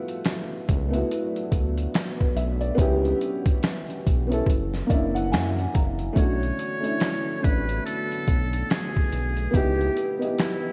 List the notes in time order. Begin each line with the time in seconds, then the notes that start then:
Already playing: F#3 A3 B3 D4 E4 F#4
0.08 closed hi-hat
0.25 finger snap, snare, closed hi-hat
0.69 C#2, kick, closed hi-hat
0.89 A3 B3
0.93 E4 F#4, closed hi-hat
1.11 closed hi-hat
1.36 closed hi-hat
1.52 D2, kick, closed hi-hat
1.78 closed hi-hat
1.94 finger snap, snare, closed hi-hat
2.18 B4, kick
2.36 B1 E5, closed hi-hat
2.61 D5, closed hi-hat
2.75 C#2 C#3 E3 G3 B3 C#4 E4, kick, closed hi-hat
2.79 E4 G4
3.05 closed hi-hat
3.21 closed hi-hat
3.46 kick, closed hi-hat
3.63 finger snap, snare, closed hi-hat
3.90 closed hi-hat
4.07 B1, kick, closed hi-hat
4.27 B3 C#4
4.31 E4 A4, closed hi-hat
4.46 F#1 D3 F#3 A#3 C#5, kick, closed hi-hat
4.74 snare, closed hi-hat
4.87 F#1 A#3 C#4 D5, kick, closed hi-hat
4.91 D4 E4
5.15 F#5, closed hi-hat
5.32 F#2 G#5, finger snap, snare, closed hi-hat
5.59 closed hi-hat
5.74 F#1 A#5, kick, closed hi-hat
5.99 closed hi-hat
6.13 B1 D3 F#3 A3 B3 C#4 D4 F#4, kick
6.17 F#4 C#5, closed hi-hat
6.43 closed hi-hat
6.59 closed hi-hat
6.80 A3 C#4, closed hi-hat
6.84 D4 E4
7.00 finger snap, snare, closed hi-hat
7.39 A3 C#4
7.43 A1 D4 B4, kick, closed hi-hat
7.69 closed hi-hat
7.86 A4, closed hi-hat
8.12 closed hi-hat
8.28 B1, kick, closed hi-hat
8.53 closed hi-hat
8.70 G#4, finger snap, snare, closed hi-hat
8.97 kick
9.12 B1, closed hi-hat
9.37 closed hi-hat
9.51 C#2 E3 G3 B3 C#4 D#4 G4, kick, closed hi-hat
9.55 E4 G4
9.81 closed hi-hat
9.97 closed hi-hat
10.19 B3 E4 D#5, closed hi-hat
10.25 G4
10.38 E4, finger snap, snare, closed hi-hat